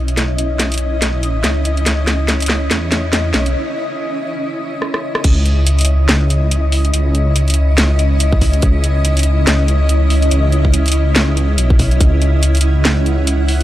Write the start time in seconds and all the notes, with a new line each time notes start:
Already playing: B1 C#4 E4 D#5
0.08 closed hi-hat
0.17 snare, closed hi-hat
0.38 closed hi-hat
0.59 snare, closed hi-hat
0.72 closed hi-hat
0.74 closed hi-hat
0.78 B1, closed hi-hat
1.02 snare, closed hi-hat
1.23 A#1, closed hi-hat
1.44 C#2, snare, closed hi-hat
1.65 closed hi-hat
1.77 closed hi-hat
1.86 C#2, snare, closed hi-hat
2.07 snare, closed hi-hat
2.28 snare, closed hi-hat
2.40 closed hi-hat
2.42 closed hi-hat
2.46 snare, closed hi-hat
2.71 E2, snare, closed hi-hat
2.92 snare, closed hi-hat
3.13 snare, closed hi-hat
3.34 B1, snare, closed hi-hat
3.46 closed hi-hat
4.82 cross-stick
4.94 cross-stick
5.15 cross-stick
5.24 C#2 C#4 E4 D#5, kick, closed hi-hat, crash
5.46 closed hi-hat
5.67 closed hi-hat
5.79 closed hi-hat
5.81 closed hi-hat
5.85 closed hi-hat
6.09 C#2, snare, closed hi-hat
6.30 closed hi-hat
6.51 closed hi-hat
6.72 open hi-hat
6.85 closed hi-hat
6.94 C#2, closed hi-hat
7.15 closed hi-hat
7.36 closed hi-hat
7.48 closed hi-hat
7.50 closed hi-hat
7.54 closed hi-hat
7.78 C#2, snare, closed hi-hat
7.99 closed hi-hat
8.20 closed hi-hat
8.32 kick
8.41 kick, open hi-hat
8.53 closed hi-hat
8.62 C#2, kick, closed hi-hat
8.84 closed hi-hat
9.05 closed hi-hat
9.17 closed hi-hat
9.19 closed hi-hat
9.23 closed hi-hat
9.47 C#2, snare, closed hi-hat
9.68 closed hi-hat
9.89 closed hi-hat
10.10 open hi-hat
10.22 closed hi-hat
10.31 C#2, closed hi-hat
10.52 closed hi-hat
10.65 kick
10.74 closed hi-hat
10.86 closed hi-hat
10.88 closed hi-hat
10.92 closed hi-hat
11.16 C#2, snare, closed hi-hat
11.37 closed hi-hat
11.58 B1, closed hi-hat
11.70 kick
11.79 kick, open hi-hat
11.91 closed hi-hat
12.00 C#2 F#5, kick, closed hi-hat
12.22 closed hi-hat
12.43 closed hi-hat
12.55 closed hi-hat
12.57 closed hi-hat
12.61 closed hi-hat
12.85 C#2, snare, closed hi-hat
13.06 closed hi-hat
13.27 closed hi-hat
13.48 open hi-hat